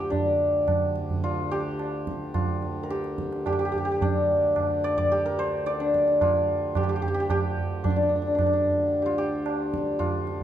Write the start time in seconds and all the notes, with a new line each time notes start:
Already playing: D2 D3 F4 A#4 C5
0.00 G4
0.10 D2 D3 D4, tabla tin, tabla ge
0.68 tabla na, tabla ge
0.96 tabla te
1.10 tabla ge
1.24 F4, tabla tin
1.51 G4, tabla na
1.79 tabla na
2.07 tabla ke
2.34 F4, tabla na, tabla ge
2.62 tabla te
2.83 A#4
2.90 G4, tabla te
3.04 tabla te
3.18 tabla ke
3.32 tabla te
3.46 G4, tabla na, tabla ge
3.53 G4
3.59 G4
3.65 G4
3.72 G4, tabla ge
3.78 G4
3.85 G4
3.92 G4
4.01 D4, tabla tin, tabla ge
4.56 tabla na, tabla ge
4.84 D5, tabla te
4.98 D5, tabla ge
5.11 G4, tabla tin
5.26 A#4
5.39 C5, tabla na
5.66 D5, tabla te
5.80 D4, tabla te
5.94 tabla ke
6.08 tabla te
6.21 F4, tabla na, tabla ge
6.75 G4, tabla na, tabla ge
6.83 G4
6.89 G4
6.96 G4
7.02 G4, tabla ge
7.08 G4
7.14 G4
7.20 G4
7.30 G4, tabla na, tabla ge
7.57 tabla ge
7.84 D4, tabla tin, tabla ge
7.90 D4
7.96 D4
8.02 D4
8.09 D4
8.16 D4
8.22 D4
8.27 D4
8.35 D4, tabla na, tabla ge
8.40 D4
8.46 D4
8.53 D4
8.66 tabla ge
8.92 tabla tin
9.02 F4 G4
9.18 G4
9.46 tabla na
9.74 tabla ke
9.99 F4, tabla na, tabla ge
10.27 tabla te